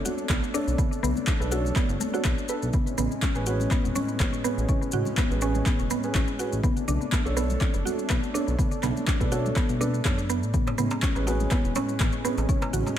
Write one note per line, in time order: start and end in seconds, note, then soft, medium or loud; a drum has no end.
0.00 2.70 A3 medium
0.00 0.51 D4 loud
0.00 2.70 D4 medium
0.00 0.51 A4 medium
0.00 0.51 C#5 loud
0.05 0.12 F#4 medium
0.05 high conga medium
0.05 low conga loud
0.05 maracas loud
0.18 maracas soft
0.29 0.39 B1 loud
0.29 0.42 B3 loud
0.29 kick loud
0.29 clap loud
0.29 maracas medium
0.43 maracas soft
0.54 1.37 D4 medium
0.54 0.67 D4 loud
0.54 1.37 A4 medium
0.54 1.37 C#5 medium
0.54 high conga loud
0.54 maracas loud
0.67 0.76 B1 medium
0.67 maracas soft
0.78 0.91 B3 medium
0.78 kick loud
0.78 mid tom medium
0.78 maracas medium
0.92 maracas soft
1.03 1.13 B1 loud
1.03 1.10 B3 loud
1.03 mid tom medium
1.03 maracas loud
1.15 high conga medium
1.15 low conga medium
1.15 maracas soft
1.27 1.39 D4 medium
1.27 kick loud
1.27 clap loud
1.27 low conga medium
1.27 maracas soft
1.40 1.71 B1 medium
1.40 1.50 D4 medium
1.40 1.50 A4 medium
1.40 1.50 B4 medium
1.40 maracas soft
1.51 2.10 D4 medium
1.51 1.59 F#4 medium
1.51 2.10 A4 medium
1.51 2.10 C#5 medium
1.51 high conga medium
1.51 maracas loud
1.65 low conga medium
1.65 maracas soft
1.76 1.88 B3 loud
1.76 kick loud
1.76 clap medium
1.76 high conga medium
1.76 maracas soft
1.89 1.97 F#1 medium
1.89 maracas soft
2.00 2.12 A3 medium
2.00 high conga loud
2.00 low conga loud
2.00 maracas medium
2.14 2.47 D4 medium
2.14 2.24 F#4 medium
2.14 2.47 A4 medium
2.14 2.47 C#5 medium
2.14 maracas soft
2.25 2.35 B1 loud
2.25 2.37 B3 medium
2.25 kick loud
2.25 clap loud
2.25 high conga medium
2.25 maracas medium
2.38 maracas soft
2.49 2.67 D4 medium
2.49 2.67 A4 medium
2.49 2.56 B4 medium
2.49 2.67 B4 medium
2.49 maracas loud
2.62 2.71 B1 medium
2.62 maracas soft
2.73 6.60 A2 medium
2.73 6.60 G#3 medium
2.73 2.86 B3 medium
2.73 6.60 C#4 medium
2.73 kick loud
2.73 mid tom medium
2.73 high conga medium
2.73 maracas soft
2.87 maracas soft
2.98 3.08 A1 loud
2.98 3.05 B3 loud
2.98 mid tom medium
2.98 maracas loud
3.11 high conga medium
3.11 maracas soft
3.22 3.34 C#4 medium
3.22 kick loud
3.22 clap loud
3.22 low conga medium
3.22 maracas soft
3.35 3.67 A1 medium
3.35 3.45 C#4 medium
3.35 3.45 G#4 medium
3.35 3.45 B4 loud
3.35 maracas soft
3.46 4.42 C#4 medium
3.46 3.54 F#4 medium
3.46 4.42 G#4 medium
3.46 4.42 B4 loud
3.46 high conga medium
3.46 maracas loud
3.60 low conga loud
3.60 maracas soft
3.71 3.83 B3 loud
3.71 kick loud
3.71 clap medium
3.71 high conga medium
3.71 maracas medium
3.84 3.93 E1 medium
3.84 maracas soft
3.95 4.08 C#4 loud
3.95 high conga medium
3.95 low conga loud
3.95 maracas loud
4.08 maracas soft
4.20 4.30 A1 loud
4.20 4.32 B3 medium
4.20 kick loud
4.20 clap loud
4.20 maracas medium
4.33 maracas soft
4.44 4.51 B3 loud
4.44 5.28 C#4 medium
4.44 5.28 G#4 medium
4.44 5.28 B4 medium
4.44 high conga loud
4.44 maracas loud
4.57 4.66 A1 medium
4.57 maracas soft
4.69 4.81 C#4 medium
4.69 kick loud
4.69 mid tom medium
4.69 maracas soft
4.82 maracas soft
4.92 5.03 A1 loud
4.92 5.00 F#4 medium
4.92 mid tom medium
4.92 maracas medium
5.05 high conga medium
5.05 low conga medium
5.05 maracas soft
5.17 5.29 B3 loud
5.17 kick loud
5.17 clap loud
5.17 low conga medium
5.17 maracas medium
5.31 5.62 A1 medium
5.31 5.40 C#4 medium
5.31 5.40 G#4 medium
5.31 5.40 B4 medium
5.31 maracas soft
5.41 6.01 C#4 medium
5.41 5.54 C#4 loud
5.41 6.01 G#4 medium
5.41 6.01 B4 loud
5.41 high conga medium
5.41 maracas loud
5.54 low conga medium
5.54 maracas soft
5.66 5.79 B3 medium
5.66 kick loud
5.66 clap medium
5.66 high conga medium
5.66 maracas soft
5.79 5.88 E1 medium
5.79 maracas soft
5.90 5.98 B3 loud
5.90 high conga medium
5.90 low conga medium
5.90 maracas medium
6.03 6.37 C#4 medium
6.03 6.37 G#4 medium
6.03 6.37 B4 medium
6.03 maracas soft
6.15 6.25 A1 loud
6.15 6.27 C#4 medium
6.15 kick loud
6.15 clap loud
6.15 high conga medium
6.15 maracas medium
6.28 maracas soft
6.39 6.58 C#4 medium
6.39 6.46 F#4 medium
6.39 6.58 G#4 medium
6.39 6.58 B4 medium
6.39 maracas medium
6.53 6.61 A1 medium
6.53 maracas soft
6.63 10.50 A3 medium
6.63 6.75 B3 loud
6.63 10.50 D4 medium
6.63 kick loud
6.63 mid tom medium
6.63 high conga medium
6.63 maracas soft
6.77 maracas soft
6.88 6.98 B1 loud
6.88 7.01 D4 loud
6.88 mid tom medium
6.88 maracas medium
7.01 high conga medium
7.01 maracas soft
7.12 7.25 B3 medium
7.12 kick loud
7.12 clap loud
7.12 low conga medium
7.12 maracas medium
7.26 7.57 B1 medium
7.26 7.35 D4 loud
7.26 7.35 A4 medium
7.26 7.35 C#5 loud
7.26 maracas soft
7.37 7.44 B3 loud
7.37 8.32 D4 medium
7.37 8.32 A4 medium
7.37 8.32 C#5 loud
7.37 high conga medium
7.37 maracas medium
7.50 low conga medium
7.50 maracas soft
7.61 7.73 D4 medium
7.61 kick loud
7.61 clap medium
7.61 high conga medium
7.61 maracas soft
7.74 7.83 F#1 medium
7.74 maracas soft
7.85 7.93 F#4 medium
7.85 high conga medium
7.85 low conga loud
7.85 maracas medium
7.99 maracas soft
8.10 8.20 B1 loud
8.10 8.22 B3 loud
8.10 kick loud
8.10 clap loud
8.10 maracas soft
8.23 maracas soft
8.34 8.47 D4 loud
8.34 9.18 D4 medium
8.34 9.18 A4 medium
8.34 9.18 C#5 medium
8.34 high conga loud
8.34 maracas medium
8.48 8.56 B1 medium
8.48 maracas soft
8.59 8.71 B3 medium
8.59 kick loud
8.59 mid tom loud
8.59 high conga medium
8.59 maracas medium
8.71 maracas soft
8.83 8.93 B1 loud
8.83 8.90 B3 loud
8.83 clap soft
8.83 mid tom medium
8.83 maracas medium
8.96 high conga medium
8.96 low conga medium
8.96 maracas soft
9.07 9.19 D4 medium
9.07 kick loud
9.07 clap loud
9.07 low conga loud
9.07 maracas soft
9.20 9.52 B1 medium
9.20 9.30 D4 medium
9.20 9.30 A4 medium
9.20 9.30 B4 medium
9.20 kick medium
9.20 maracas soft
9.32 9.78 D4 medium
9.32 9.39 F#4 medium
9.32 9.78 A4 medium
9.32 9.78 C#5 loud
9.32 high conga medium
9.32 maracas medium
9.46 low conga loud
9.46 maracas soft
9.56 9.68 B3 loud
9.56 kick loud
9.56 clap medium
9.56 high conga medium
9.56 maracas medium
9.69 10.01 B1 loud
9.69 maracas soft
9.81 9.93 D4 loud
9.81 9.99 D4 medium
9.81 9.99 A4 medium
9.81 9.99 B4 medium
9.81 high conga medium
9.81 low conga loud
9.81 maracas medium
9.94 maracas soft
10.05 10.44 F#1 medium
10.05 10.18 B3 medium
10.05 10.17 D4 medium
10.05 10.17 A4 medium
10.05 10.17 C#5 loud
10.05 kick loud
10.05 clap loud
10.05 high conga medium
10.05 maracas medium
10.18 maracas soft
10.30 10.37 B3 loud
10.30 maracas medium
10.42 10.74 A1 medium
10.42 maracas soft
10.54 12.99 A2 medium
10.54 12.99 G#3 medium
10.54 10.66 B3 medium
10.54 12.99 C#4 medium
10.54 kick loud
10.54 mid tom medium
10.54 high conga medium
10.54 maracas medium
10.67 darbuka ka loud
10.67 darbuka tek medium
10.67 maracas soft
10.78 10.88 A1 loud
10.78 10.85 B3 loud
10.78 mid tom medium
10.78 maracas loud
10.90 darbuka tek loud
10.90 high conga medium
10.90 maracas soft
11.02 11.15 C#4 medium
11.02 kick loud
11.02 clap loud
11.02 low conga medium
11.02 maracas soft
11.16 11.47 A1 medium
11.16 11.25 C#4 loud
11.16 11.25 G#4 medium
11.16 11.25 B4 loud
11.16 darbuka tek medium
11.16 maracas soft
11.27 12.22 C#4 loud
11.27 11.34 F#4 medium
11.27 12.22 G#4 medium
11.27 12.22 B4 loud
11.27 darbuka ka medium
11.27 high conga medium
11.27 maracas medium
11.40 low conga medium
11.40 maracas soft
11.51 11.63 B3 loud
11.51 kick loud
11.51 clap medium
11.51 high conga medium
11.51 darbuka tek medium
11.51 maracas soft
11.64 11.73 E1 medium
11.64 maracas soft
11.75 11.88 C#4 loud
11.75 darbuka ka medium
11.75 high conga medium
11.75 darbuka tek medium
11.75 low conga loud
11.75 maracas medium
11.89 maracas soft
12.00 12.10 A1 medium
12.00 12.13 B3 medium
12.00 kick loud
12.00 clap loud
12.00 darbuka tek medium
12.00 maracas medium
12.12 maracas soft
12.24 12.32 B3 loud
12.24 12.99 C#4 medium
12.24 12.99 G#4 medium
12.24 12.99 B4 medium
12.24 high conga loud
12.24 maracas medium
12.38 12.46 A1 medium
12.38 darbuka tek medium
12.38 maracas soft
12.49 12.61 C#4 medium
12.49 kick loud
12.49 mid tom medium
12.49 maracas medium
12.62 darbuka ka loud
12.62 darbuka tek loud
12.62 maracas soft
12.73 12.83 A1 loud
12.73 12.80 F#4 medium
12.73 mid tom medium
12.73 maracas loud
12.87 darbuka tek medium
12.87 high conga medium
12.87 low conga medium
12.87 maracas soft